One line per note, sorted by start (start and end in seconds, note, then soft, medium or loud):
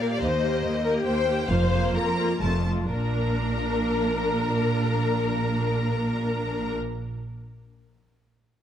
0.00 0.17 A#2 soft
0.00 0.22 A#3 soft
0.00 0.22 G4 soft
0.00 0.06 A#4 medium
0.00 0.21 F5 soft
0.13 0.23 D5 medium
0.22 0.57 D#2 soft
0.22 0.59 D#2 soft
0.22 0.83 C5 medium
0.22 1.05 D#5 soft
0.43 0.83 A#3 soft
0.43 0.83 G4 soft
0.64 1.01 D#2 soft
0.84 1.26 A#3 soft
0.84 1.26 G4 soft
0.84 0.93 A#4 medium
1.05 1.44 D#2 soft
1.05 1.48 C5 medium
1.05 1.48 G5 medium
1.27 1.48 A#3 soft
1.27 1.48 G4 soft
1.48 1.86 F1 soft
1.48 1.88 F2 soft
1.48 1.70 A#3 soft
1.48 1.70 F4 soft
1.48 1.93 C5 medium
1.48 1.94 F5 soft
1.71 2.17 A#3 soft
1.71 2.17 F4 soft
1.94 2.36 F2 soft
1.94 2.42 A#4 medium
1.94 2.41 A#5 soft
2.18 2.42 A#3 soft
2.18 2.42 F4 soft
2.41 2.84 F1 soft
2.41 2.86 F2 soft
2.41 2.66 A3 soft
2.41 2.66 F4 soft
2.41 2.66 A5 soft
2.67 2.92 A3 soft
2.67 2.92 F4 soft
2.92 6.74 A#1 soft
2.92 6.75 A#2 soft
2.92 6.75 D4 soft
2.92 6.75 A#4 soft
2.92 6.75 A#5 soft